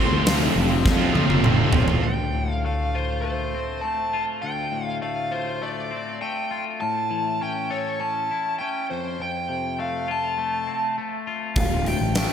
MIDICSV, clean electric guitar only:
0, 0, Header, 1, 2, 480
1, 0, Start_track
1, 0, Key_signature, -1, "minor"
1, 0, Tempo, 594648
1, 1651, Time_signature, 4, 2, 24, 8
1, 9952, End_track
2, 0, Start_track
2, 0, Title_t, "Clean electric guitar"
2, 0, Program_c, 0, 27
2, 1652, Note_on_c, 0, 38, 70
2, 1895, Note_on_c, 0, 45, 63
2, 2134, Note_on_c, 0, 57, 67
2, 2379, Note_on_c, 0, 65, 71
2, 2606, Note_off_c, 0, 57, 0
2, 2609, Note_on_c, 0, 57, 69
2, 2851, Note_off_c, 0, 38, 0
2, 2862, Note_on_c, 0, 60, 67
2, 3093, Note_off_c, 0, 45, 0
2, 3094, Note_off_c, 0, 57, 0
2, 3097, Note_on_c, 0, 57, 68
2, 3327, Note_off_c, 0, 65, 0
2, 3336, Note_on_c, 0, 65, 68
2, 3577, Note_on_c, 0, 38, 75
2, 3809, Note_on_c, 0, 45, 67
2, 4046, Note_off_c, 0, 57, 0
2, 4049, Note_on_c, 0, 57, 70
2, 4057, Note_off_c, 0, 60, 0
2, 4281, Note_off_c, 0, 65, 0
2, 4290, Note_on_c, 0, 65, 73
2, 4531, Note_off_c, 0, 57, 0
2, 4534, Note_on_c, 0, 57, 69
2, 4771, Note_on_c, 0, 60, 65
2, 4776, Note_off_c, 0, 38, 0
2, 5010, Note_off_c, 0, 57, 0
2, 5012, Note_off_c, 0, 45, 0
2, 5014, Note_on_c, 0, 57, 73
2, 5244, Note_off_c, 0, 65, 0
2, 5253, Note_on_c, 0, 65, 71
2, 5493, Note_off_c, 0, 60, 0
2, 5493, Note_off_c, 0, 65, 0
2, 5502, Note_on_c, 0, 45, 72
2, 5737, Note_on_c, 0, 52, 67
2, 5981, Note_off_c, 0, 57, 0
2, 5985, Note_on_c, 0, 61, 75
2, 6219, Note_on_c, 0, 69, 71
2, 6455, Note_off_c, 0, 61, 0
2, 6465, Note_on_c, 0, 61, 66
2, 6699, Note_off_c, 0, 45, 0
2, 6709, Note_on_c, 0, 64, 67
2, 6936, Note_off_c, 0, 52, 0
2, 6938, Note_off_c, 0, 61, 0
2, 6948, Note_on_c, 0, 61, 75
2, 7182, Note_off_c, 0, 61, 0
2, 7182, Note_off_c, 0, 64, 0
2, 7190, Note_on_c, 0, 41, 65
2, 7412, Note_off_c, 0, 41, 0
2, 7422, Note_on_c, 0, 41, 77
2, 7661, Note_on_c, 0, 48, 65
2, 7899, Note_on_c, 0, 57, 69
2, 8133, Note_off_c, 0, 69, 0
2, 8137, Note_on_c, 0, 65, 71
2, 8374, Note_off_c, 0, 57, 0
2, 8377, Note_on_c, 0, 57, 72
2, 8615, Note_on_c, 0, 60, 66
2, 8620, Note_off_c, 0, 41, 0
2, 8859, Note_off_c, 0, 57, 0
2, 8860, Note_off_c, 0, 48, 0
2, 8862, Note_on_c, 0, 57, 66
2, 9095, Note_off_c, 0, 65, 0
2, 9098, Note_on_c, 0, 65, 74
2, 9342, Note_on_c, 0, 38, 73
2, 9366, Note_off_c, 0, 60, 0
2, 9577, Note_on_c, 0, 45, 62
2, 9817, Note_off_c, 0, 57, 0
2, 9821, Note_on_c, 0, 57, 70
2, 9952, Note_off_c, 0, 38, 0
2, 9952, Note_off_c, 0, 45, 0
2, 9952, Note_off_c, 0, 57, 0
2, 9952, Note_off_c, 0, 65, 0
2, 9952, End_track
0, 0, End_of_file